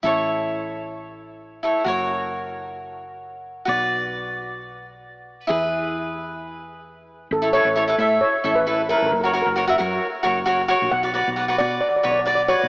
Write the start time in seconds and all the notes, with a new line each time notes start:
0.03 A1 E4 A4 C#5
1.63 E4 A4 C#5
1.84 F#1 F#4 A#4 C#5
3.65 B1 F#4 B4 D5
5.47 E2 E4 G#4 B4
7.31 A1 A4
7.42 E4 A4 C#5
7.53 E4 A4 B4 C#5
7.65 A1
7.76 E4 A4 C#5
7.88 E4 A4 B4
7.98 A2 E4 A4 E5
8.21 C#5
8.44 A1 E4 A4 E5
8.56 B4
8.66 E4 A4 B4
8.89 E4 A4 A#4 B4
8.98 A#4
9.02 A1
9.06 A#4
9.12 F#1 A#4
9.21 F#4 A#4
9.25 A#4 C#5
9.33 F#4 A#4 C#5
9.42 A#4
9.46 F#1
9.56 F#4 A#4 C#5
9.68 F#4 A#4 E5
9.78 F#2 F#4 A#4 C#5
10.23 F#1 F#4 A#4 C#5
10.46 F#4 A#4 C#5
10.68 F#4 A#4 C#5
10.82 A#1
10.91 B1 F#5
11.03 F#4 B4 D5
11.14 F#4 B4 D5
11.28 B1
11.36 F#4 B4 D5
11.48 F#4 B4 D5
11.58 B2 F#4 B4 D5
11.81 D5
11.89 D5
11.96 D5
12.03 B1 F#4 B4 C#5 D5
12.11 D5
12.19 D5
12.25 F#4 B4 D5
12.35 D5
12.48 F#4 B4 C#5 D5
12.63 B1